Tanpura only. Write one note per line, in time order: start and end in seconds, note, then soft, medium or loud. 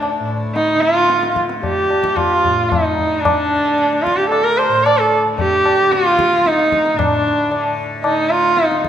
0.00 1.89 D2 medium
0.00 0.20 A2 medium
0.00 0.76 D3 medium
0.20 2.45 A2 medium
0.76 1.33 D3 medium
1.33 3.02 D3 medium
1.89 4.14 D2 medium
2.45 4.68 A2 medium
3.02 3.57 D3 medium
3.57 5.25 D3 medium
4.14 6.38 D2 medium
4.68 6.93 A2 medium
5.25 5.82 D3 medium
5.82 7.49 D3 medium
6.38 8.59 D2 medium
6.94 8.89 A2 medium
7.49 8.05 D3 medium
8.05 8.89 D3 medium
8.59 8.89 D2 medium